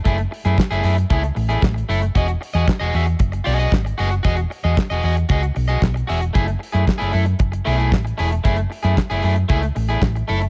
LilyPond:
<<
  \new Staff \with { instrumentName = "Clean electric guitar" } { \time 4/4 \key fis \dorian \tempo 4 = 114 <a e' gis'>16 r8 <a e' gis'>16 r16 <a e' gis'>16 <a e' gis'>16 r16 <a e' gis'>16 r8 <a e' gis'>16 r8 <a e' a'>16 r16 | <fis' gis' dis''>16 r8 <fis' gis' dis''>16 r16 <fis' gis' dis''>16 <fis' gis' e''>16 r8. <fis' gis' dis''>16 <fis' gis' dis''>16 r8 <fis' gis' dis''>16 r16 | <fis' gis' dis''>16 r8 <fis' gis' dis''>16 r16 <fis' gis' dis''>16 <fis' gis' dis''>16 r16 <fis' gis' dis''>16 r8 <fis' gis' dis''>16 r8 <fis' gis' e''>16 r16 | <a e' gis'>16 r8 <a e' gis'>16 r16 <a e' gis'>16 <a e' a'>16 r8. <a e' gis'>16 <a e' gis'>16 r8 <a e' gis'>16 r16 |
<a e' gis'>16 r8 <a e' gis'>16 r16 <a e' gis'>16 <a e' gis'>16 r16 <a e' gis'>16 r8 <a e' gis'>16 r8 <a e' a'>16 r16 | }
  \new Staff \with { instrumentName = "Fingered electric bass" } { \clef bass \time 4/4 \key fis \dorian fis,,8 r16 fis,16 r16 fis,,16 fis,8 cis,8 a,,8 a,,8 fis,,8 | e,,8 r16 e,16 r16 e,,16 e,8 fis,,8 b,,8 gis,,8 fis,,8 | e,,8 r16 e,16 r16 e,,16 e,8 cis,8 b,,8 b,,8 e,,8 | fis,,8 r16 fis,16 r16 fis,,16 fis,8 fis,,8 b,,8 a,,8 e,,8 |
fis,,8 r16 fis,16 r16 fis,,16 fis,8 cis,8 a,,8 a,,8 fis,,8 | }
  \new DrumStaff \with { instrumentName = "Drums" } \drummode { \time 4/4 <hh bd>16 hh16 hho16 hh16 <hc bd sn>16 hh16 hho16 hh16 <hh bd>16 hh16 hho16 hh16 <hc bd sn>16 hh16 hho16 hh16 | <hh bd>16 hh16 hho16 hh16 <hc bd sn>16 hh16 hho16 hh16 <hh bd>16 hh16 hho16 hh16 <hc bd sn>16 hh16 hho16 hh16 | <hh bd>16 hh16 hho16 hh16 <hc bd sn>16 hh16 hho16 hh16 <hh bd>16 hh16 hho16 hh16 <hc bd sn>16 hh16 hho16 hh16 | <hh bd>16 hh16 hho16 hh16 <hc bd sn>16 hh16 hho16 hh16 <hh bd>16 hh16 hho16 hh16 <hc bd sn>16 hh16 hho16 hh16 |
<hh bd>16 hh16 hho16 hh16 <hc bd sn>16 hh16 hho16 hh16 <hh bd>16 hh16 hho16 hh16 <hc bd sn>16 hh16 hho16 hh16 | }
>>